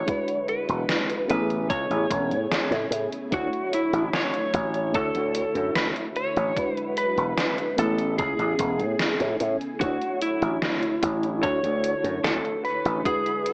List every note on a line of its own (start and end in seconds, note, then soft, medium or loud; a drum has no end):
0.00 1.26 D3 medium
0.00 0.10 A3 medium
0.00 0.08 F#4 medium
0.00 0.48 C#5 loud
0.06 1.28 F#3 medium
0.06 1.21 G#3 medium
0.06 1.29 G#3 medium
0.06 1.21 D4 medium
0.06 1.21 E4 medium
0.06 13.53 E4 medium
0.06 1.22 F#4 medium
0.06 1.22 B4 medium
0.06 kick loud
0.06 closed hi-hat medium
0.28 closed hi-hat soft
0.48 1.29 B4 loud
0.48 closed hi-hat medium
0.69 0.84 E1 loud
0.69 closed hi-hat soft
0.89 snare loud
0.89 closed hi-hat medium
1.10 closed hi-hat soft
1.27 1.70 A1 medium
1.27 3.30 C#3 medium
1.27 3.23 A3 medium
1.27 3.30 A3 medium
1.27 3.24 B3 medium
1.27 3.24 C#4 medium
1.27 3.24 E4 medium
1.27 3.31 G#4 medium
1.27 3.25 G#4 medium
1.27 1.69 B4 medium
1.27 closed hi-hat medium
1.50 closed hi-hat soft
1.70 1.85 C#2 loud
1.70 2.88 C#5 medium
1.70 kick loud
1.70 closed hi-hat medium
1.90 2.05 A1 medium
1.90 closed hi-hat soft
2.10 2.32 E1 medium
2.10 kick loud
2.10 closed hi-hat medium
2.30 2.45 A2 medium
2.30 closed hi-hat soft
2.52 snare loud
2.52 closed hi-hat medium
2.71 2.86 A2 medium
2.71 snare soft
2.71 closed hi-hat soft
2.91 3.06 A2 medium
2.91 closed hi-hat medium
3.12 closed hi-hat soft
3.31 3.47 D2 medium
3.31 7.74 D3 medium
3.31 4.93 F#3 medium
3.31 4.86 A3 medium
3.31 4.86 D4 medium
3.31 4.86 E4 medium
3.31 4.87 F#4 medium
3.31 3.74 F#4 loud
3.31 6.53 C#5 medium
3.31 4.87 C#5 medium
3.31 kick loud
3.31 closed hi-hat medium
3.53 closed hi-hat soft
3.73 4.15 E4 medium
3.73 closed hi-hat medium
3.93 4.08 A1 loud
3.93 closed hi-hat soft
4.13 4.97 C#5 loud
4.13 snare loud
4.13 closed hi-hat medium
4.34 closed hi-hat soft
4.54 4.94 A1 medium
4.54 kick loud
4.54 closed hi-hat medium
4.74 closed hi-hat soft
4.92 5.09 D2 medium
4.92 6.47 A3 medium
4.92 6.55 A3 medium
4.92 6.48 D4 medium
4.92 6.48 E4 medium
4.92 6.49 F#4 medium
4.92 5.76 A4 loud
4.92 6.49 C#5 medium
4.92 kick loud
4.92 closed hi-hat medium
5.15 5.44 D2 medium
5.15 closed hi-hat soft
5.35 closed hi-hat medium
5.55 5.70 F#2 medium
5.55 closed hi-hat soft
5.75 5.90 D2 medium
5.75 5.87 B4 loud
5.75 snare loud
5.75 closed hi-hat medium
5.96 closed hi-hat soft
6.16 6.76 C#5 loud
6.16 closed hi-hat medium
6.36 6.51 A1 loud
6.36 closed hi-hat soft
6.55 7.77 F#3 medium
6.55 7.69 G#3 medium
6.55 7.78 G#3 medium
6.55 7.70 D4 medium
6.55 7.70 E4 medium
6.55 7.70 F#4 medium
6.55 7.71 B4 medium
6.55 kick loud
6.55 closed hi-hat medium
6.76 6.98 B4 loud
6.76 closed hi-hat soft
6.97 7.78 B4 loud
6.97 closed hi-hat medium
7.17 7.32 E1 loud
7.17 closed hi-hat soft
7.38 snare loud
7.38 closed hi-hat medium
7.58 closed hi-hat soft
7.76 8.19 A1 medium
7.76 9.79 C#3 medium
7.76 9.72 A3 medium
7.76 9.79 A3 medium
7.76 9.72 B3 medium
7.76 9.73 C#4 medium
7.76 9.73 E4 medium
7.76 8.18 A4 medium
7.76 9.79 G#5 medium
7.76 closed hi-hat medium
7.98 closed hi-hat soft
8.18 8.34 C#2 loud
8.18 9.36 G#4 medium
8.18 kick loud
8.18 closed hi-hat medium
8.39 8.54 A1 medium
8.39 closed hi-hat soft
8.59 8.81 E1 medium
8.59 kick loud
8.59 closed hi-hat medium
8.79 8.94 A2 medium
8.79 closed hi-hat soft
8.99 snare loud
8.99 closed hi-hat medium
9.20 9.35 A2 medium
9.20 snare soft
9.20 closed hi-hat soft
9.40 9.55 A2 medium
9.40 closed hi-hat medium
9.61 closed hi-hat soft
9.79 9.96 D2 loud
9.79 13.53 D3 medium
9.79 11.42 F#3 medium
9.79 11.34 A3 medium
9.79 11.35 D4 medium
9.79 11.35 E4 medium
9.79 10.22 F#4 medium
9.79 11.35 F#4 medium
9.79 11.41 C#5 medium
9.79 11.36 C#5 medium
9.79 kick loud
9.79 closed hi-hat medium
10.02 closed hi-hat soft
10.22 11.47 E4 loud
10.22 closed hi-hat medium
10.42 10.57 A1 loud
10.42 closed hi-hat soft
10.62 snare loud
10.62 closed hi-hat medium
10.83 closed hi-hat soft
11.03 11.43 A1 medium
11.03 kick loud
11.03 closed hi-hat medium
11.23 closed hi-hat soft
11.42 11.58 D2 medium
11.42 12.96 A3 medium
11.42 13.04 A3 medium
11.42 12.97 D4 medium
11.42 12.97 E4 medium
11.42 12.98 F#4 medium
11.42 12.20 C#5 loud
11.42 13.04 C#5 medium
11.42 12.98 C#5 medium
11.42 kick loud
11.42 closed hi-hat medium
11.63 11.93 D2 medium
11.63 closed hi-hat soft
11.84 closed hi-hat medium
12.04 12.19 F#2 loud
12.04 closed hi-hat soft
12.24 12.39 D2 medium
12.24 12.64 A4 loud
12.24 snare loud
12.24 closed hi-hat medium
12.45 closed hi-hat soft
12.64 13.05 B4 loud
12.64 closed hi-hat medium
12.85 13.00 A1 medium
12.85 closed hi-hat soft
13.03 13.53 F#3 medium
13.03 13.53 G#3 medium
13.03 13.53 D4 medium
13.03 13.53 E4 medium
13.03 13.53 F#4 medium
13.03 13.53 G#4 loud
13.03 13.53 B4 medium
13.03 13.53 G#5 medium
13.03 kick loud
13.03 closed hi-hat medium
13.26 closed hi-hat soft
13.46 closed hi-hat medium